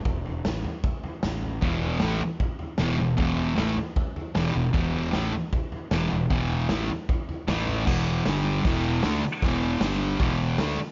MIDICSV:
0, 0, Header, 1, 6, 480
1, 0, Start_track
1, 0, Tempo, 389610
1, 74, Time_signature, 4, 2, 24, 8
1, 13449, End_track
2, 0, Start_track
2, 0, Title_t, "Distorted electric guitar"
2, 0, Program_c, 0, 30
2, 1989, Note_on_c, 0, 40, 98
2, 2001, Note_on_c, 0, 47, 92
2, 2016, Note_on_c, 0, 52, 92
2, 2466, Note_off_c, 0, 40, 0
2, 2472, Note_off_c, 0, 47, 0
2, 2473, Note_off_c, 0, 52, 0
2, 2478, Note_on_c, 0, 45, 92
2, 2488, Note_on_c, 0, 52, 87
2, 2493, Note_on_c, 0, 57, 103
2, 2711, Note_off_c, 0, 45, 0
2, 2716, Note_off_c, 0, 52, 0
2, 2719, Note_off_c, 0, 57, 0
2, 3437, Note_on_c, 0, 40, 89
2, 3447, Note_on_c, 0, 52, 99
2, 3453, Note_on_c, 0, 47, 93
2, 3654, Note_off_c, 0, 40, 0
2, 3668, Note_on_c, 0, 40, 61
2, 3671, Note_off_c, 0, 47, 0
2, 3676, Note_off_c, 0, 52, 0
2, 3686, Note_on_c, 0, 47, 64
2, 3866, Note_off_c, 0, 40, 0
2, 3875, Note_off_c, 0, 47, 0
2, 3907, Note_on_c, 0, 40, 81
2, 3907, Note_on_c, 0, 47, 99
2, 3915, Note_on_c, 0, 52, 103
2, 4369, Note_off_c, 0, 52, 0
2, 4373, Note_off_c, 0, 47, 0
2, 4378, Note_on_c, 0, 45, 72
2, 4384, Note_on_c, 0, 52, 83
2, 4385, Note_on_c, 0, 57, 98
2, 4386, Note_off_c, 0, 40, 0
2, 4622, Note_off_c, 0, 45, 0
2, 4625, Note_off_c, 0, 52, 0
2, 4625, Note_off_c, 0, 57, 0
2, 5354, Note_on_c, 0, 40, 86
2, 5365, Note_on_c, 0, 47, 88
2, 5369, Note_on_c, 0, 52, 99
2, 5572, Note_off_c, 0, 40, 0
2, 5580, Note_off_c, 0, 47, 0
2, 5587, Note_on_c, 0, 40, 58
2, 5595, Note_on_c, 0, 47, 68
2, 5598, Note_off_c, 0, 52, 0
2, 5786, Note_off_c, 0, 40, 0
2, 5790, Note_off_c, 0, 47, 0
2, 5830, Note_on_c, 0, 40, 94
2, 5833, Note_on_c, 0, 47, 98
2, 5846, Note_on_c, 0, 52, 104
2, 6295, Note_off_c, 0, 52, 0
2, 6301, Note_off_c, 0, 47, 0
2, 6306, Note_on_c, 0, 45, 90
2, 6309, Note_off_c, 0, 40, 0
2, 6310, Note_on_c, 0, 52, 90
2, 6328, Note_on_c, 0, 57, 98
2, 6546, Note_off_c, 0, 45, 0
2, 6549, Note_off_c, 0, 52, 0
2, 6558, Note_off_c, 0, 57, 0
2, 7284, Note_on_c, 0, 40, 89
2, 7291, Note_on_c, 0, 47, 110
2, 7293, Note_on_c, 0, 52, 109
2, 7500, Note_off_c, 0, 40, 0
2, 7501, Note_off_c, 0, 47, 0
2, 7514, Note_on_c, 0, 40, 61
2, 7516, Note_on_c, 0, 47, 61
2, 7520, Note_off_c, 0, 52, 0
2, 7710, Note_off_c, 0, 40, 0
2, 7711, Note_off_c, 0, 47, 0
2, 7764, Note_on_c, 0, 40, 95
2, 7768, Note_on_c, 0, 47, 98
2, 7790, Note_on_c, 0, 52, 102
2, 8236, Note_off_c, 0, 40, 0
2, 8238, Note_off_c, 0, 47, 0
2, 8243, Note_off_c, 0, 52, 0
2, 8255, Note_on_c, 0, 45, 84
2, 8258, Note_on_c, 0, 52, 103
2, 8266, Note_on_c, 0, 57, 86
2, 8481, Note_off_c, 0, 45, 0
2, 8483, Note_off_c, 0, 52, 0
2, 8487, Note_off_c, 0, 57, 0
2, 9211, Note_on_c, 0, 45, 100
2, 9223, Note_on_c, 0, 52, 108
2, 9231, Note_on_c, 0, 57, 100
2, 9674, Note_off_c, 0, 45, 0
2, 9679, Note_off_c, 0, 52, 0
2, 9679, Note_on_c, 0, 40, 94
2, 9679, Note_on_c, 0, 47, 96
2, 9688, Note_off_c, 0, 57, 0
2, 9694, Note_on_c, 0, 52, 97
2, 10152, Note_off_c, 0, 40, 0
2, 10152, Note_off_c, 0, 47, 0
2, 10159, Note_off_c, 0, 52, 0
2, 10186, Note_on_c, 0, 43, 82
2, 10194, Note_on_c, 0, 50, 100
2, 10202, Note_on_c, 0, 55, 96
2, 10645, Note_off_c, 0, 43, 0
2, 10649, Note_off_c, 0, 50, 0
2, 10653, Note_off_c, 0, 55, 0
2, 10660, Note_on_c, 0, 40, 109
2, 10667, Note_on_c, 0, 47, 108
2, 10678, Note_on_c, 0, 52, 104
2, 11121, Note_off_c, 0, 40, 0
2, 11125, Note_off_c, 0, 47, 0
2, 11130, Note_off_c, 0, 52, 0
2, 11145, Note_on_c, 0, 50, 97
2, 11152, Note_on_c, 0, 57, 102
2, 11156, Note_on_c, 0, 62, 116
2, 11363, Note_off_c, 0, 50, 0
2, 11367, Note_off_c, 0, 57, 0
2, 11369, Note_off_c, 0, 62, 0
2, 11631, Note_on_c, 0, 40, 102
2, 11634, Note_on_c, 0, 47, 104
2, 11650, Note_on_c, 0, 52, 108
2, 12085, Note_off_c, 0, 40, 0
2, 12087, Note_off_c, 0, 47, 0
2, 12094, Note_on_c, 0, 43, 87
2, 12095, Note_off_c, 0, 52, 0
2, 12102, Note_on_c, 0, 50, 88
2, 12110, Note_on_c, 0, 55, 97
2, 12556, Note_off_c, 0, 43, 0
2, 12560, Note_off_c, 0, 50, 0
2, 12564, Note_off_c, 0, 55, 0
2, 12577, Note_on_c, 0, 40, 88
2, 12584, Note_on_c, 0, 47, 109
2, 12594, Note_on_c, 0, 52, 96
2, 13037, Note_off_c, 0, 40, 0
2, 13040, Note_off_c, 0, 47, 0
2, 13045, Note_off_c, 0, 52, 0
2, 13046, Note_on_c, 0, 50, 102
2, 13050, Note_on_c, 0, 57, 120
2, 13063, Note_on_c, 0, 62, 105
2, 13271, Note_off_c, 0, 50, 0
2, 13274, Note_off_c, 0, 57, 0
2, 13280, Note_off_c, 0, 62, 0
2, 13449, End_track
3, 0, Start_track
3, 0, Title_t, "Fingered electric bass"
3, 0, Program_c, 1, 33
3, 60, Note_on_c, 1, 28, 89
3, 514, Note_off_c, 1, 28, 0
3, 551, Note_on_c, 1, 33, 90
3, 776, Note_off_c, 1, 33, 0
3, 1513, Note_on_c, 1, 33, 80
3, 1962, Note_off_c, 1, 33, 0
3, 1994, Note_on_c, 1, 28, 96
3, 2442, Note_off_c, 1, 28, 0
3, 2493, Note_on_c, 1, 33, 86
3, 2709, Note_off_c, 1, 33, 0
3, 3442, Note_on_c, 1, 28, 77
3, 3664, Note_off_c, 1, 28, 0
3, 3691, Note_on_c, 1, 28, 74
3, 3909, Note_off_c, 1, 28, 0
3, 3921, Note_on_c, 1, 28, 83
3, 4367, Note_off_c, 1, 28, 0
3, 4427, Note_on_c, 1, 33, 89
3, 4638, Note_off_c, 1, 33, 0
3, 5368, Note_on_c, 1, 28, 76
3, 5588, Note_off_c, 1, 28, 0
3, 5601, Note_on_c, 1, 28, 84
3, 5824, Note_off_c, 1, 28, 0
3, 5834, Note_on_c, 1, 28, 94
3, 6284, Note_off_c, 1, 28, 0
3, 6327, Note_on_c, 1, 33, 91
3, 6548, Note_off_c, 1, 33, 0
3, 7275, Note_on_c, 1, 28, 83
3, 7501, Note_off_c, 1, 28, 0
3, 7523, Note_on_c, 1, 28, 82
3, 7746, Note_off_c, 1, 28, 0
3, 7767, Note_on_c, 1, 28, 92
3, 8211, Note_off_c, 1, 28, 0
3, 8245, Note_on_c, 1, 33, 93
3, 8467, Note_off_c, 1, 33, 0
3, 9209, Note_on_c, 1, 33, 88
3, 9652, Note_off_c, 1, 33, 0
3, 9694, Note_on_c, 1, 28, 94
3, 10134, Note_off_c, 1, 28, 0
3, 10174, Note_on_c, 1, 31, 91
3, 10613, Note_off_c, 1, 31, 0
3, 10648, Note_on_c, 1, 28, 98
3, 11089, Note_off_c, 1, 28, 0
3, 11137, Note_on_c, 1, 38, 91
3, 11351, Note_off_c, 1, 38, 0
3, 11610, Note_on_c, 1, 28, 99
3, 12049, Note_off_c, 1, 28, 0
3, 12075, Note_on_c, 1, 31, 93
3, 12520, Note_off_c, 1, 31, 0
3, 12565, Note_on_c, 1, 28, 96
3, 13005, Note_off_c, 1, 28, 0
3, 13031, Note_on_c, 1, 38, 94
3, 13254, Note_off_c, 1, 38, 0
3, 13449, End_track
4, 0, Start_track
4, 0, Title_t, "Muted distorted electric guitar strokes"
4, 11386, Note_on_c, 9, 29, 59
4, 11509, Note_off_c, 9, 29, 0
4, 13291, Note_on_c, 9, 29, 64
4, 13414, Note_off_c, 9, 29, 0
4, 13449, End_track
5, 0, Start_track
5, 0, Title_t, "Muted fingered electric bass strokes"
5, 11370, Note_on_c, 9, 29, 41
5, 11493, Note_off_c, 9, 29, 0
5, 13270, Note_on_c, 9, 29, 46
5, 13393, Note_off_c, 9, 29, 0
5, 13449, End_track
6, 0, Start_track
6, 0, Title_t, "Drums"
6, 63, Note_on_c, 9, 43, 88
6, 66, Note_on_c, 9, 36, 108
6, 187, Note_off_c, 9, 43, 0
6, 189, Note_off_c, 9, 36, 0
6, 316, Note_on_c, 9, 43, 59
6, 439, Note_off_c, 9, 43, 0
6, 552, Note_on_c, 9, 38, 109
6, 554, Note_on_c, 9, 43, 79
6, 676, Note_off_c, 9, 38, 0
6, 677, Note_off_c, 9, 43, 0
6, 793, Note_on_c, 9, 43, 68
6, 916, Note_off_c, 9, 43, 0
6, 1032, Note_on_c, 9, 36, 105
6, 1033, Note_on_c, 9, 43, 90
6, 1155, Note_off_c, 9, 36, 0
6, 1156, Note_off_c, 9, 43, 0
6, 1276, Note_on_c, 9, 43, 67
6, 1399, Note_off_c, 9, 43, 0
6, 1513, Note_on_c, 9, 38, 104
6, 1514, Note_on_c, 9, 43, 79
6, 1636, Note_off_c, 9, 38, 0
6, 1637, Note_off_c, 9, 43, 0
6, 1758, Note_on_c, 9, 43, 56
6, 1881, Note_off_c, 9, 43, 0
6, 2000, Note_on_c, 9, 36, 104
6, 2000, Note_on_c, 9, 43, 85
6, 2123, Note_off_c, 9, 36, 0
6, 2123, Note_off_c, 9, 43, 0
6, 2239, Note_on_c, 9, 43, 57
6, 2362, Note_off_c, 9, 43, 0
6, 2462, Note_on_c, 9, 38, 105
6, 2463, Note_on_c, 9, 43, 76
6, 2585, Note_off_c, 9, 38, 0
6, 2586, Note_off_c, 9, 43, 0
6, 2712, Note_on_c, 9, 43, 58
6, 2835, Note_off_c, 9, 43, 0
6, 2956, Note_on_c, 9, 43, 82
6, 2957, Note_on_c, 9, 36, 100
6, 3079, Note_off_c, 9, 43, 0
6, 3080, Note_off_c, 9, 36, 0
6, 3191, Note_on_c, 9, 43, 59
6, 3314, Note_off_c, 9, 43, 0
6, 3422, Note_on_c, 9, 38, 102
6, 3424, Note_on_c, 9, 43, 73
6, 3546, Note_off_c, 9, 38, 0
6, 3547, Note_off_c, 9, 43, 0
6, 3674, Note_on_c, 9, 43, 64
6, 3797, Note_off_c, 9, 43, 0
6, 3913, Note_on_c, 9, 43, 90
6, 3920, Note_on_c, 9, 36, 115
6, 4036, Note_off_c, 9, 43, 0
6, 4043, Note_off_c, 9, 36, 0
6, 4152, Note_on_c, 9, 43, 57
6, 4275, Note_off_c, 9, 43, 0
6, 4407, Note_on_c, 9, 38, 102
6, 4408, Note_on_c, 9, 43, 81
6, 4530, Note_off_c, 9, 38, 0
6, 4531, Note_off_c, 9, 43, 0
6, 4645, Note_on_c, 9, 43, 64
6, 4768, Note_off_c, 9, 43, 0
6, 4882, Note_on_c, 9, 36, 113
6, 4886, Note_on_c, 9, 43, 88
6, 5005, Note_off_c, 9, 36, 0
6, 5009, Note_off_c, 9, 43, 0
6, 5128, Note_on_c, 9, 43, 70
6, 5251, Note_off_c, 9, 43, 0
6, 5360, Note_on_c, 9, 38, 112
6, 5361, Note_on_c, 9, 43, 83
6, 5483, Note_off_c, 9, 38, 0
6, 5484, Note_off_c, 9, 43, 0
6, 5607, Note_on_c, 9, 43, 64
6, 5730, Note_off_c, 9, 43, 0
6, 5841, Note_on_c, 9, 36, 108
6, 5843, Note_on_c, 9, 43, 92
6, 5964, Note_off_c, 9, 36, 0
6, 5967, Note_off_c, 9, 43, 0
6, 6087, Note_on_c, 9, 43, 59
6, 6210, Note_off_c, 9, 43, 0
6, 6324, Note_on_c, 9, 38, 109
6, 6326, Note_on_c, 9, 43, 73
6, 6448, Note_off_c, 9, 38, 0
6, 6449, Note_off_c, 9, 43, 0
6, 6579, Note_on_c, 9, 43, 55
6, 6702, Note_off_c, 9, 43, 0
6, 6809, Note_on_c, 9, 36, 109
6, 6821, Note_on_c, 9, 43, 81
6, 6932, Note_off_c, 9, 36, 0
6, 6944, Note_off_c, 9, 43, 0
6, 7048, Note_on_c, 9, 43, 66
6, 7172, Note_off_c, 9, 43, 0
6, 7283, Note_on_c, 9, 38, 108
6, 7284, Note_on_c, 9, 43, 78
6, 7406, Note_off_c, 9, 38, 0
6, 7408, Note_off_c, 9, 43, 0
6, 7529, Note_on_c, 9, 43, 60
6, 7652, Note_off_c, 9, 43, 0
6, 7768, Note_on_c, 9, 36, 106
6, 7768, Note_on_c, 9, 43, 85
6, 7891, Note_off_c, 9, 36, 0
6, 7891, Note_off_c, 9, 43, 0
6, 8001, Note_on_c, 9, 43, 56
6, 8124, Note_off_c, 9, 43, 0
6, 8242, Note_on_c, 9, 38, 112
6, 8243, Note_on_c, 9, 43, 78
6, 8365, Note_off_c, 9, 38, 0
6, 8367, Note_off_c, 9, 43, 0
6, 8489, Note_on_c, 9, 43, 67
6, 8612, Note_off_c, 9, 43, 0
6, 8735, Note_on_c, 9, 36, 111
6, 8740, Note_on_c, 9, 43, 90
6, 8858, Note_off_c, 9, 36, 0
6, 8863, Note_off_c, 9, 43, 0
6, 8979, Note_on_c, 9, 43, 68
6, 9102, Note_off_c, 9, 43, 0
6, 9220, Note_on_c, 9, 38, 112
6, 9221, Note_on_c, 9, 43, 86
6, 9343, Note_off_c, 9, 38, 0
6, 9344, Note_off_c, 9, 43, 0
6, 9457, Note_on_c, 9, 43, 70
6, 9581, Note_off_c, 9, 43, 0
6, 9695, Note_on_c, 9, 49, 119
6, 9697, Note_on_c, 9, 36, 111
6, 9819, Note_off_c, 9, 49, 0
6, 9821, Note_off_c, 9, 36, 0
6, 10171, Note_on_c, 9, 38, 106
6, 10172, Note_on_c, 9, 46, 59
6, 10294, Note_off_c, 9, 38, 0
6, 10295, Note_off_c, 9, 46, 0
6, 10654, Note_on_c, 9, 46, 62
6, 10656, Note_on_c, 9, 36, 115
6, 10778, Note_off_c, 9, 46, 0
6, 10779, Note_off_c, 9, 36, 0
6, 11124, Note_on_c, 9, 38, 113
6, 11125, Note_on_c, 9, 46, 60
6, 11247, Note_off_c, 9, 38, 0
6, 11249, Note_off_c, 9, 46, 0
6, 11610, Note_on_c, 9, 36, 117
6, 11619, Note_on_c, 9, 46, 66
6, 11734, Note_off_c, 9, 36, 0
6, 11742, Note_off_c, 9, 46, 0
6, 12084, Note_on_c, 9, 38, 124
6, 12085, Note_on_c, 9, 46, 68
6, 12207, Note_off_c, 9, 38, 0
6, 12209, Note_off_c, 9, 46, 0
6, 12564, Note_on_c, 9, 36, 113
6, 12571, Note_on_c, 9, 46, 72
6, 12687, Note_off_c, 9, 36, 0
6, 12694, Note_off_c, 9, 46, 0
6, 13038, Note_on_c, 9, 38, 111
6, 13039, Note_on_c, 9, 46, 62
6, 13161, Note_off_c, 9, 38, 0
6, 13163, Note_off_c, 9, 46, 0
6, 13449, End_track
0, 0, End_of_file